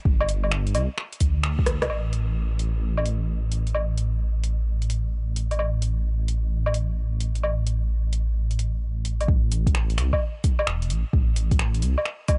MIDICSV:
0, 0, Header, 1, 3, 480
1, 0, Start_track
1, 0, Tempo, 461538
1, 56, Time_signature, 4, 2, 24, 8
1, 12880, End_track
2, 0, Start_track
2, 0, Title_t, "Detuned saw bass"
2, 0, Program_c, 0, 39
2, 56, Note_on_c, 0, 31, 101
2, 775, Note_on_c, 0, 36, 86
2, 791, Note_off_c, 0, 31, 0
2, 919, Note_off_c, 0, 36, 0
2, 1256, Note_on_c, 0, 38, 98
2, 1872, Note_off_c, 0, 38, 0
2, 1894, Note_on_c, 0, 36, 83
2, 1970, Note_off_c, 0, 36, 0
2, 1977, Note_on_c, 0, 33, 83
2, 9640, Note_off_c, 0, 33, 0
2, 9655, Note_on_c, 0, 33, 100
2, 10375, Note_on_c, 0, 36, 90
2, 10391, Note_off_c, 0, 33, 0
2, 10519, Note_off_c, 0, 36, 0
2, 11096, Note_on_c, 0, 28, 94
2, 11338, Note_on_c, 0, 33, 98
2, 11354, Note_off_c, 0, 28, 0
2, 11481, Note_off_c, 0, 33, 0
2, 11579, Note_on_c, 0, 33, 102
2, 12298, Note_on_c, 0, 36, 89
2, 12314, Note_off_c, 0, 33, 0
2, 12441, Note_off_c, 0, 36, 0
2, 12880, End_track
3, 0, Start_track
3, 0, Title_t, "Drums"
3, 55, Note_on_c, 9, 36, 118
3, 159, Note_off_c, 9, 36, 0
3, 214, Note_on_c, 9, 77, 72
3, 298, Note_on_c, 9, 42, 57
3, 298, Note_on_c, 9, 69, 77
3, 318, Note_off_c, 9, 77, 0
3, 402, Note_off_c, 9, 42, 0
3, 402, Note_off_c, 9, 69, 0
3, 453, Note_on_c, 9, 77, 39
3, 536, Note_on_c, 9, 26, 104
3, 557, Note_off_c, 9, 77, 0
3, 640, Note_off_c, 9, 26, 0
3, 694, Note_on_c, 9, 42, 33
3, 776, Note_off_c, 9, 42, 0
3, 776, Note_on_c, 9, 42, 58
3, 776, Note_on_c, 9, 69, 68
3, 776, Note_on_c, 9, 77, 54
3, 880, Note_off_c, 9, 42, 0
3, 880, Note_off_c, 9, 69, 0
3, 880, Note_off_c, 9, 77, 0
3, 1016, Note_on_c, 9, 26, 61
3, 1120, Note_off_c, 9, 26, 0
3, 1170, Note_on_c, 9, 42, 33
3, 1252, Note_off_c, 9, 42, 0
3, 1252, Note_on_c, 9, 42, 59
3, 1252, Note_on_c, 9, 69, 81
3, 1255, Note_on_c, 9, 36, 57
3, 1356, Note_off_c, 9, 42, 0
3, 1356, Note_off_c, 9, 69, 0
3, 1359, Note_off_c, 9, 36, 0
3, 1492, Note_on_c, 9, 26, 108
3, 1596, Note_off_c, 9, 26, 0
3, 1651, Note_on_c, 9, 36, 103
3, 1731, Note_on_c, 9, 37, 61
3, 1731, Note_on_c, 9, 42, 58
3, 1731, Note_on_c, 9, 69, 69
3, 1755, Note_off_c, 9, 36, 0
3, 1835, Note_off_c, 9, 37, 0
3, 1835, Note_off_c, 9, 42, 0
3, 1835, Note_off_c, 9, 69, 0
3, 1892, Note_on_c, 9, 37, 72
3, 1892, Note_on_c, 9, 42, 32
3, 1892, Note_on_c, 9, 77, 54
3, 1974, Note_off_c, 9, 77, 0
3, 1974, Note_on_c, 9, 77, 59
3, 1996, Note_off_c, 9, 37, 0
3, 1996, Note_off_c, 9, 42, 0
3, 2078, Note_off_c, 9, 77, 0
3, 2213, Note_on_c, 9, 42, 51
3, 2317, Note_off_c, 9, 42, 0
3, 2697, Note_on_c, 9, 42, 51
3, 2801, Note_off_c, 9, 42, 0
3, 3093, Note_on_c, 9, 77, 60
3, 3178, Note_on_c, 9, 42, 53
3, 3197, Note_off_c, 9, 77, 0
3, 3282, Note_off_c, 9, 42, 0
3, 3657, Note_on_c, 9, 42, 51
3, 3761, Note_off_c, 9, 42, 0
3, 3815, Note_on_c, 9, 42, 27
3, 3895, Note_on_c, 9, 77, 59
3, 3919, Note_off_c, 9, 42, 0
3, 3999, Note_off_c, 9, 77, 0
3, 4135, Note_on_c, 9, 42, 52
3, 4239, Note_off_c, 9, 42, 0
3, 4613, Note_on_c, 9, 42, 53
3, 4717, Note_off_c, 9, 42, 0
3, 5011, Note_on_c, 9, 42, 30
3, 5095, Note_off_c, 9, 42, 0
3, 5095, Note_on_c, 9, 42, 55
3, 5199, Note_off_c, 9, 42, 0
3, 5577, Note_on_c, 9, 42, 52
3, 5681, Note_off_c, 9, 42, 0
3, 5732, Note_on_c, 9, 42, 28
3, 5732, Note_on_c, 9, 77, 32
3, 5814, Note_off_c, 9, 77, 0
3, 5814, Note_on_c, 9, 77, 57
3, 5836, Note_off_c, 9, 42, 0
3, 5918, Note_off_c, 9, 77, 0
3, 6053, Note_on_c, 9, 42, 52
3, 6157, Note_off_c, 9, 42, 0
3, 6534, Note_on_c, 9, 42, 50
3, 6638, Note_off_c, 9, 42, 0
3, 6929, Note_on_c, 9, 77, 59
3, 7012, Note_on_c, 9, 42, 53
3, 7033, Note_off_c, 9, 77, 0
3, 7116, Note_off_c, 9, 42, 0
3, 7493, Note_on_c, 9, 42, 52
3, 7597, Note_off_c, 9, 42, 0
3, 7648, Note_on_c, 9, 42, 28
3, 7732, Note_on_c, 9, 77, 56
3, 7752, Note_off_c, 9, 42, 0
3, 7836, Note_off_c, 9, 77, 0
3, 7973, Note_on_c, 9, 42, 50
3, 8077, Note_off_c, 9, 42, 0
3, 8453, Note_on_c, 9, 42, 49
3, 8557, Note_off_c, 9, 42, 0
3, 8848, Note_on_c, 9, 42, 28
3, 8934, Note_off_c, 9, 42, 0
3, 8934, Note_on_c, 9, 42, 53
3, 9038, Note_off_c, 9, 42, 0
3, 9412, Note_on_c, 9, 42, 50
3, 9516, Note_off_c, 9, 42, 0
3, 9574, Note_on_c, 9, 42, 27
3, 9574, Note_on_c, 9, 77, 31
3, 9655, Note_on_c, 9, 36, 123
3, 9678, Note_off_c, 9, 42, 0
3, 9678, Note_off_c, 9, 77, 0
3, 9759, Note_off_c, 9, 36, 0
3, 9897, Note_on_c, 9, 42, 58
3, 9897, Note_on_c, 9, 69, 75
3, 10001, Note_off_c, 9, 42, 0
3, 10001, Note_off_c, 9, 69, 0
3, 10052, Note_on_c, 9, 36, 104
3, 10057, Note_on_c, 9, 42, 33
3, 10137, Note_on_c, 9, 26, 103
3, 10156, Note_off_c, 9, 36, 0
3, 10161, Note_off_c, 9, 42, 0
3, 10241, Note_off_c, 9, 26, 0
3, 10295, Note_on_c, 9, 42, 33
3, 10378, Note_off_c, 9, 42, 0
3, 10378, Note_on_c, 9, 26, 61
3, 10378, Note_on_c, 9, 42, 58
3, 10378, Note_on_c, 9, 69, 64
3, 10482, Note_off_c, 9, 26, 0
3, 10482, Note_off_c, 9, 42, 0
3, 10482, Note_off_c, 9, 69, 0
3, 10534, Note_on_c, 9, 36, 63
3, 10534, Note_on_c, 9, 77, 55
3, 10638, Note_off_c, 9, 36, 0
3, 10638, Note_off_c, 9, 77, 0
3, 10857, Note_on_c, 9, 42, 59
3, 10857, Note_on_c, 9, 69, 75
3, 10858, Note_on_c, 9, 36, 98
3, 10961, Note_off_c, 9, 42, 0
3, 10961, Note_off_c, 9, 69, 0
3, 10962, Note_off_c, 9, 36, 0
3, 11013, Note_on_c, 9, 77, 64
3, 11097, Note_on_c, 9, 26, 111
3, 11117, Note_off_c, 9, 77, 0
3, 11201, Note_off_c, 9, 26, 0
3, 11254, Note_on_c, 9, 42, 33
3, 11337, Note_off_c, 9, 42, 0
3, 11337, Note_on_c, 9, 42, 60
3, 11337, Note_on_c, 9, 69, 64
3, 11441, Note_off_c, 9, 42, 0
3, 11441, Note_off_c, 9, 69, 0
3, 11578, Note_on_c, 9, 36, 127
3, 11682, Note_off_c, 9, 36, 0
3, 11817, Note_on_c, 9, 42, 60
3, 11817, Note_on_c, 9, 69, 70
3, 11921, Note_off_c, 9, 42, 0
3, 11921, Note_off_c, 9, 69, 0
3, 11974, Note_on_c, 9, 36, 108
3, 11974, Note_on_c, 9, 42, 34
3, 12057, Note_on_c, 9, 26, 109
3, 12078, Note_off_c, 9, 36, 0
3, 12078, Note_off_c, 9, 42, 0
3, 12161, Note_off_c, 9, 26, 0
3, 12215, Note_on_c, 9, 42, 34
3, 12296, Note_off_c, 9, 42, 0
3, 12296, Note_on_c, 9, 42, 58
3, 12296, Note_on_c, 9, 69, 63
3, 12400, Note_off_c, 9, 42, 0
3, 12400, Note_off_c, 9, 69, 0
3, 12456, Note_on_c, 9, 77, 55
3, 12537, Note_on_c, 9, 26, 65
3, 12560, Note_off_c, 9, 77, 0
3, 12641, Note_off_c, 9, 26, 0
3, 12775, Note_on_c, 9, 42, 61
3, 12775, Note_on_c, 9, 69, 76
3, 12775, Note_on_c, 9, 77, 64
3, 12777, Note_on_c, 9, 36, 104
3, 12879, Note_off_c, 9, 42, 0
3, 12879, Note_off_c, 9, 69, 0
3, 12879, Note_off_c, 9, 77, 0
3, 12880, Note_off_c, 9, 36, 0
3, 12880, End_track
0, 0, End_of_file